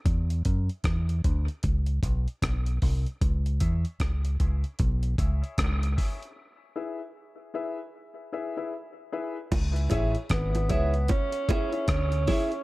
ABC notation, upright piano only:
X:1
M:4/4
L:1/16
Q:"Swing 16ths" 1/4=76
K:C#phr
V:1 name="Upright piano"
z16 | z2 [EGce] z3 [EGce] z3 [EGce] [EGce] z2 [EGce] z | z2 [EGBe] z3 [EGBe] z3 [EGBe] [EGBe] z2 [EGBe] z | z2 [EGce] z3 [EGce] z3 [EGce] [EGce] z2 [EGce] z |]